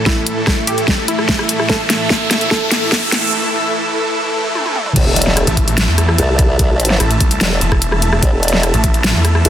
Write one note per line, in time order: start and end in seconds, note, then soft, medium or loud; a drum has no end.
0.00 4.92 A2 medium
0.00 4.92 E3 medium
0.00 3.33 A3 medium
0.00 4.92 E4 medium
0.00 3.33 A4 medium
0.00 4.92 A4 medium
0.00 3.33 E5 medium
0.00 3.33 E6 medium
0.00 riser medium
0.06 0.60 E4 medium
0.06 kick medium
0.06 snare medium
0.27 closed hi-hat medium
0.47 kick medium
0.47 cross-stick medium
0.47 snare medium
0.67 0.99 G4 medium
0.67 closed hi-hat medium
0.78 closed hi-hat soft
0.88 kick medium
0.88 snare medium
1.08 1.62 E4 loud
1.08 closed hi-hat medium
1.19 cross-stick medium
1.29 kick loud
1.29 snare medium
1.39 cross-stick medium
1.49 closed hi-hat medium
1.60 cross-stick medium
1.69 2.43 A4 medium
1.69 kick loud
1.69 snare medium
1.90 snare medium
1.90 closed hi-hat medium
2.10 kick medium
2.10 snare medium
2.31 snare medium
2.31 closed hi-hat medium
2.41 closed hi-hat soft
2.51 3.25 A4 loud
2.51 kick loud
2.51 snare medium
2.71 snare medium
2.71 closed hi-hat medium
2.92 kick loud
2.92 snare medium
3.12 snare medium
3.12 closed hi-hat medium
4.14 swell medium
4.55 high tom medium
4.66 high tom medium
4.76 mid tom medium
4.86 mid tom medium
4.96 5.05 A1 loud
4.96 9.49 A3 medium
4.96 9.49 E4 medium
4.96 9.49 E5 medium
4.96 9.49 A5 medium
4.96 kick loud
4.96 closed hi-hat medium
4.96 crash loud
4.96 impact medium
5.06 5.46 E1 loud
5.16 closed hi-hat medium
5.22 closed hi-hat medium
5.27 snare soft
5.37 cross-stick medium
5.37 closed hi-hat medium
5.47 5.86 A1 loud
5.47 closed hi-hat soft
5.57 kick medium
5.57 closed hi-hat medium
5.68 closed hi-hat soft
5.78 snare loud
5.78 closed hi-hat medium
5.88 6.17 E2 medium
5.98 cross-stick medium
5.98 closed hi-hat medium
6.09 cross-stick medium
6.18 6.99 C2 medium
6.18 closed hi-hat medium
6.39 kick loud
6.39 closed hi-hat medium
6.59 kick loud
6.59 closed hi-hat medium
6.80 closed hi-hat medium
6.85 closed hi-hat medium
6.90 snare soft
7.00 7.19 A1 loud
7.00 cross-stick medium
7.00 closed hi-hat medium
7.11 closed hi-hat soft
7.20 7.39 C2 medium
7.20 kick medium
7.20 closed hi-hat medium
7.31 closed hi-hat soft
7.41 7.60 E1 loud
7.41 snare loud
7.41 closed hi-hat medium
7.61 8.21 E1 medium
7.61 closed hi-hat medium
7.72 kick medium
7.72 cross-stick medium
7.82 closed hi-hat medium
7.92 cross-stick medium
8.02 closed hi-hat medium
8.13 cross-stick medium
8.23 8.31 A1 loud
8.23 kick loud
8.23 closed hi-hat medium
8.33 8.72 E1 loud
8.43 closed hi-hat soft
8.48 closed hi-hat medium
8.53 snare soft
8.63 cross-stick medium
8.63 closed hi-hat medium
8.74 9.13 A1 loud
8.74 closed hi-hat soft
8.84 kick medium
8.84 closed hi-hat medium
8.94 closed hi-hat soft
9.04 snare loud
9.04 closed hi-hat medium
9.15 9.43 E2 loud
9.25 cross-stick soft
9.25 closed hi-hat medium
9.35 cross-stick medium
9.45 9.49 C2 medium
9.45 closed hi-hat medium